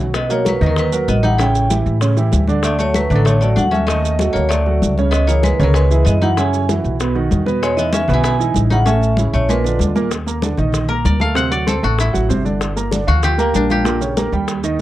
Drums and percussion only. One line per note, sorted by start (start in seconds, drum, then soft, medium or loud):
0.14 high bongo medium
0.14 high conga soft
0.14 maracas medium
0.29 high bongo soft
0.29 high conga soft
0.29 maracas medium
0.45 high bongo medium
0.45 high conga medium
0.45 maracas medium
0.61 high conga soft
0.61 low conga medium
0.61 maracas soft
0.76 high bongo medium
0.76 high conga soft
0.76 maracas medium
0.92 high bongo soft
0.92 high conga soft
0.92 maracas medium
1.08 high bongo soft
1.08 low bongo medium
1.08 high conga medium
1.08 maracas medium
1.24 high bongo soft
1.24 high conga medium
1.24 maracas soft
1.39 high bongo medium
1.39 high conga soft
1.39 maracas medium
1.55 high bongo soft
1.55 maracas medium
1.70 high bongo medium
1.70 high conga loud
1.70 maracas medium
1.86 high conga soft
1.86 maracas soft
2.01 high bongo medium
2.01 high conga soft
2.01 maracas medium
2.17 high bongo soft
2.17 high conga soft
2.17 maracas medium
2.32 high bongo soft
2.32 low bongo medium
2.32 high conga medium
2.32 maracas medium
2.47 high bongo soft
2.47 high conga medium
2.47 maracas soft
2.63 high bongo medium
2.63 high conga soft
2.63 maracas medium
2.79 high bongo soft
2.79 high conga soft
2.79 maracas medium
2.94 high bongo medium
2.94 high conga loud
2.94 maracas medium
3.11 high conga soft
3.11 low conga medium
3.11 maracas soft
3.26 high bongo medium
3.26 high conga soft
3.26 low conga medium
3.26 maracas medium
3.41 high bongo soft
3.41 high conga soft
3.41 maracas medium
3.57 high bongo soft
3.57 low bongo medium
3.57 high conga medium
3.57 maracas medium
3.72 high bongo soft
3.72 high conga medium
3.72 maracas soft
3.88 high bongo medium
3.88 high conga soft
3.88 maracas medium
4.04 high bongo soft
4.04 high conga soft
4.04 maracas medium
4.19 high bongo medium
4.19 high conga loud
4.19 maracas medium
4.35 high conga soft
4.35 maracas soft
4.50 high bongo medium
4.50 high conga soft
4.50 maracas medium
4.66 high bongo soft
4.66 high conga soft
4.82 high bongo soft
4.82 low bongo medium
4.82 high conga medium
4.82 maracas medium
4.97 high bongo soft
4.97 high conga medium
4.97 maracas soft
5.13 high bongo medium
5.13 maracas medium
5.28 high bongo soft
5.28 high conga soft
5.28 maracas medium
5.43 high bongo medium
5.43 high conga medium
5.43 maracas medium
5.60 high conga soft
5.60 low conga medium
5.60 maracas soft
5.74 high bongo medium
5.74 maracas medium
5.90 high bongo soft
5.90 high conga soft
5.90 maracas medium
6.06 high bongo soft
6.06 low bongo medium
6.06 high conga medium
6.06 maracas medium
6.22 high bongo soft
6.22 high conga medium
6.22 maracas soft
6.37 high bongo medium
6.37 high conga soft
6.37 maracas medium
6.54 high bongo soft
6.54 high conga soft
6.54 maracas medium
6.69 high bongo medium
6.69 high conga medium
6.69 maracas medium
6.84 high conga soft
6.84 maracas soft
7.00 high bongo medium
7.00 high conga soft
7.00 maracas medium
7.15 high bongo soft
7.15 high conga soft
7.31 high bongo soft
7.31 low bongo medium
7.31 high conga loud
7.31 maracas medium
7.46 high bongo soft
7.46 high conga medium
7.46 maracas soft
7.62 high bongo medium
7.62 high conga soft
7.62 maracas medium
7.77 high bongo soft
7.77 high conga soft
7.77 maracas medium
7.93 high bongo medium
7.93 high conga loud
7.93 maracas medium
8.08 high conga soft
8.08 low conga medium
8.08 maracas soft
8.23 high bongo medium
8.23 high conga soft
8.23 maracas medium
8.39 high bongo soft
8.39 high conga soft
8.39 maracas medium
8.54 high bongo soft
8.54 low bongo medium
8.54 high conga medium
8.54 maracas medium
8.70 high bongo soft
8.70 high conga medium
8.70 maracas soft
8.86 high bongo loud
8.86 high conga soft
8.86 maracas medium
9.02 high conga soft
9.02 maracas medium
9.17 high conga loud
9.17 maracas medium
9.34 high conga soft
9.34 maracas soft
9.49 low bongo medium
9.49 high conga soft
9.49 maracas medium
9.64 low bongo medium
9.64 high conga soft
9.64 maracas medium
9.79 low bongo medium
9.79 high conga medium
9.79 maracas medium
9.95 low bongo medium
9.95 high conga medium
9.95 maracas soft
10.11 high bongo medium
10.11 high conga soft
10.11 maracas medium
10.26 high bongo soft
10.26 high conga soft
10.26 maracas medium
10.42 high bongo medium
10.42 high conga loud
10.42 maracas medium
10.57 high conga soft
10.57 low conga medium
10.57 maracas soft
10.72 high bongo medium
10.72 high conga soft
10.72 low conga medium
10.72 maracas medium
10.89 high bongo soft
10.89 high conga soft
11.05 high bongo soft
11.05 low bongo medium
11.05 high conga medium
11.05 maracas medium
11.20 high bongo soft
11.20 high conga medium
11.20 maracas soft
11.35 high bongo medium
11.35 high conga soft
11.35 maracas medium
11.51 high bongo soft
11.51 high conga soft
11.51 maracas medium
11.67 high bongo medium
11.67 high conga loud
11.67 maracas medium
11.83 high conga soft
11.83 maracas soft
11.98 high bongo medium
11.98 high conga soft
11.98 maracas medium
12.14 high bongo soft
12.14 high conga soft
12.14 maracas medium
12.30 high bongo soft
12.30 low bongo medium
12.30 high conga medium
12.30 maracas medium
12.46 high bongo soft
12.46 high conga medium
12.46 maracas soft
12.61 high bongo medium
12.61 high conga soft
12.61 maracas medium
12.76 high bongo soft
12.76 high conga soft
12.76 maracas medium
12.91 high bongo medium
12.91 high conga medium
12.91 maracas medium
13.08 high conga soft
13.08 low conga medium
13.08 maracas soft
13.23 high bongo medium
13.23 high conga soft
13.23 low conga medium
13.23 maracas medium
13.39 high bongo soft
13.39 high conga soft
13.39 maracas medium
13.54 high bongo soft
13.54 low bongo medium
13.54 high conga medium
13.54 maracas medium
13.70 high bongo soft
13.70 high conga medium
13.70 maracas soft
13.85 high bongo medium
13.85 high conga soft
13.85 maracas medium
14.01 high bongo soft
14.01 high conga soft
14.01 maracas medium
14.17 high bongo medium
14.17 high conga loud
14.17 maracas medium
14.33 high conga soft
14.33 maracas soft
14.48 high bongo medium
14.48 high conga soft
14.48 maracas medium
14.64 high bongo soft
14.64 high conga soft
14.64 maracas medium